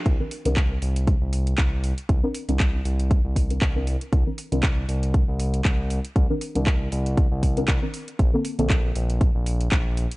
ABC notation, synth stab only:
X:1
M:4/4
L:1/16
Q:"Swing 16ths" 1/4=118
K:Cdor
V:1 name="Synth stab"
z [E,CDB] z [E,CDB]12- [E,CDB]- | [E,CDB] [E,CDB] z [E,CDB] z6 z [E,CDB]2 [E,CDB] z2 | z [E,CDB] z [E,CDB]12- [E,CDB]- | [E,CDB] [E,CDB] z [E,CDB] z6 z [E,CDB]2 [E,CDB] z2 |
z [D,B,CA] z [D,B,CA]12- [D,B,CA] |]